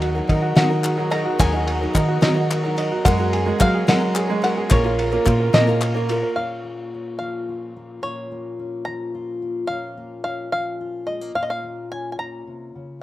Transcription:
Already playing: fingered electric bass D#2, string section D#3 D#4 F#4 A#4, upright piano F#3 D#4, steel-string acoustic guitar D#4 F#4 A#4, five-string banjo F#5
0.02 upright piano F#4, ride
0.15 upright piano F#3, steel-string acoustic guitar D#4 F#4 A#4
0.28 fingered electric bass D#3, steel-string acoustic guitar F#3 D#4 F#4 A#4, upright piano D#4, kick, ride
0.42 upright piano F#4
0.55 steel-string acoustic guitar D#3 F#3 D#4 F#4 A#4, fingered electric bass D#3, upright piano F#3, five-string banjo F#5, snare, ride
0.69 upright piano D#4, steel-string acoustic guitar D#4 F#4 A#4
0.83 upright piano F#4, clap, ride
0.97 upright piano F#3, steel-string acoustic guitar D#4 F#4 A#4
1.10 steel-string acoustic guitar F#3 D#4 F#4 A#4, upright piano D#4, five-string banjo A#5, ride
1.25 upright piano F#4
1.38 fingered electric bass D#2, steel-string acoustic guitar D#3 F#3 D#4 F#4 A#4, upright piano F#3, five-string banjo G#5, kick, clap, ride
1.53 upright piano D#4, steel-string acoustic guitar D#4 F#4 A#4
1.67 upright piano F#4, ride
1.80 upright piano F#3, steel-string acoustic guitar D#4 F#4 A#4
1.94 fingered electric bass D#3, steel-string acoustic guitar F#3 D#4 F#4 A#4, upright piano D#4, kick, clap, ride
2.08 upright piano F#4
2.21 steel-string acoustic guitar D#3 F#3 D#4 F#4 A#4, fingered electric bass D#3, upright piano F#3, five-string banjo D#5, snare, ride
2.34 upright piano D#4, steel-string acoustic guitar D#4 F#4 A#4
2.50 upright piano F#4, clap, ride
2.63 upright piano F#3, steel-string acoustic guitar D#4 F#4 A#4
2.77 steel-string acoustic guitar F#3 D#4 F#4 A#4, upright piano D#4, ride
2.92 upright piano F#4
3.05 fingered electric bass F#2, steel-string acoustic guitar F#3 C#4 G#4 A#4, string section F#3 C#4 G#4, upright piano G#3, five-string banjo F#5, kick, clap, ride
3.18 steel-string acoustic guitar C#4 G#4 A#4, upright piano F#4
3.33 upright piano G#4, ride
3.46 upright piano G#3, steel-string acoustic guitar C#4 G#4 A#4
3.59 steel-string acoustic guitar F#3 C#4 G#4 A#4, fingered electric bass F#3, upright piano F#4, five-string banjo F5, kick, clap, ride
3.74 upright piano G#4
3.87 steel-string acoustic guitar F#3 C#4 G#4 A#4, fingered electric bass F#3, upright piano G#3, five-string banjo F#5, snare, ride
4.00 steel-string acoustic guitar C#4 G#4 A#4, upright piano F#4
4.15 upright piano G#4, clap, ride
4.27 upright piano G#3, steel-string acoustic guitar C#4 G#4 A#4
4.42 steel-string acoustic guitar F#3 C#4 G#4 A#4, upright piano F#4, five-string banjo F#5, ride
4.57 upright piano G#4
4.69 fingered electric bass A#1, steel-string acoustic guitar A#2 F3 A#3 C#4 F4 A#4, string section A#3 F4, upright piano A#3, five-string banjo C#5, kick, clap, ride
4.84 steel-string acoustic guitar A#3 C#4 F4 A#4, upright piano F4
4.99 upright piano A#4, ride
5.11 upright piano A#3, steel-string acoustic guitar A#3 C#4 F4 A#4, clap
5.25 fingered electric bass A#2, steel-string acoustic guitar A#3 C#4 F4 A#4, upright piano F4, kick, clap, ride
5.40 upright piano A#4
5.53 steel-string acoustic guitar A#2 F3 A#3 C#4 F4 A#4, fingered electric bass A#2, upright piano A#3, five-string banjo D#5, snare, ride
5.67 steel-string acoustic guitar A#3 C#4 F4 A#4, upright piano F4, clap
5.81 upright piano A#4, clap, ride
5.94 upright piano A#3, steel-string acoustic guitar A#3 C#4 F4 A#4
6.09 steel-string acoustic guitar A#3 C#4 F4 A#4, upright piano F4, ride
6.23 upright piano A#4
6.36 steel-string acoustic guitar A#2 A#3 C#4 F4, five-string banjo F5
6.65 steel-string acoustic guitar A#3
6.94 steel-string acoustic guitar C#4
7.19 steel-string acoustic guitar F3, five-string banjo F5
7.49 steel-string acoustic guitar F4
7.77 steel-string acoustic guitar A#3
8.03 steel-string acoustic guitar A#2 A#3 C#4 F4, five-string banjo C#5
8.32 steel-string acoustic guitar A#3
8.59 steel-string acoustic guitar C#4
8.85 steel-string acoustic guitar F3, five-string banjo A#5
9.15 steel-string acoustic guitar F4
9.42 steel-string acoustic guitar A#3
9.67 steel-string acoustic guitar A#2 A#3 C#4 F4, five-string banjo F5
9.97 steel-string acoustic guitar A#3
10.24 steel-string acoustic guitar C#4, five-string banjo F5
10.52 steel-string acoustic guitar F3, five-string banjo F5
10.81 steel-string acoustic guitar F4
11.07 steel-string acoustic guitar G#3, five-string banjo D#5
11.21 steel-string acoustic guitar A#3
11.35 steel-string acoustic guitar A#2 A#3 C#4 F4, five-string banjo F5
11.43 five-string banjo D#5
11.50 five-string banjo F5
11.64 steel-string acoustic guitar A#3
11.92 steel-string acoustic guitar C#4, five-string banjo G#5
12.12 five-string banjo G#5
12.19 steel-string acoustic guitar A#2, five-string banjo A#5
12.47 steel-string acoustic guitar C3
12.75 steel-string acoustic guitar C#3

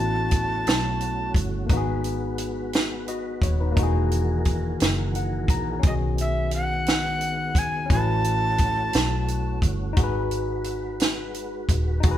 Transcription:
Already playing: fingered electric bass A1, tonewheel organ A3 C#4 F#4, tine electric piano B3 C#4 E4 F#4, recorder A5
0.31 kick, closed hi-hat
0.67 fingered electric bass B1, snare, closed hi-hat
1.01 closed hi-hat
1.34 fingered electric bass G1, kick, closed hi-hat
1.66 tine electric piano A#3 D#4, kick, closed hi-hat
1.71 fingered electric bass G#1, tonewheel organ G#3 B4, tine electric piano B3 F#4
1.77 tine electric piano G#4
2.04 closed hi-hat
2.38 closed hi-hat
2.73 snare, closed hi-hat
3.08 tine electric piano F#4 D#5, closed hi-hat
3.42 fingered electric bass D#1, tine electric piano C#5, kick, closed hi-hat
3.60 tine electric piano D#4 B4
3.72 tine electric piano A#3
3.76 fingered electric bass E1, tonewheel organ D#3 E3 F#4 G#4 A#4, tine electric piano D#4 F#4, kick, closed hi-hat
3.83 tine electric piano G#4
4.11 closed hi-hat
4.45 kick, closed hi-hat
4.80 fingered electric bass F#1, snare, closed hi-hat
5.15 tine electric piano F#5, closed hi-hat
5.48 fingered electric bass A#1, tine electric piano A#5, kick, closed hi-hat
5.79 tine electric piano D#3 C#4, tonewheel organ G#3 B3, closed hi-hat
5.83 fingered electric bass B1, tine electric piano F#4, recorder D#5, kick
5.90 tine electric piano G#4
6.18 recorder E5, closed hi-hat
6.51 recorder F#5, closed hi-hat
6.86 snare, closed hi-hat
7.21 closed hi-hat
7.55 fingered electric bass G#1, recorder G#5, kick, closed hi-hat
7.86 tine electric piano C#4 E4
7.90 fingered electric bass A1, tonewheel organ A3 C#4 F#4, tine electric piano F#4, recorder A5, kick, closed hi-hat
7.97 tine electric piano B4
8.24 closed hi-hat
8.58 kick, closed hi-hat
8.93 fingered electric bass B1, snare, closed hi-hat
9.28 closed hi-hat
9.62 fingered electric bass G1, kick, closed hi-hat
9.93 tine electric piano D#4 F#4, kick, closed hi-hat
9.97 fingered electric bass G#1, tonewheel organ G#3 B4, tine electric piano G#4
10.03 tine electric piano B4
10.31 closed hi-hat
10.64 closed hi-hat
11.00 snare, closed hi-hat
11.34 closed hi-hat
11.69 fingered electric bass D#1, kick, closed hi-hat
12.00 tine electric piano D#4 F#4, kick, closed hi-hat
12.05 fingered electric bass E1, tonewheel organ E3 D#4 F#4 G#4 A#5, tine electric piano G#4
12.11 tine electric piano B4

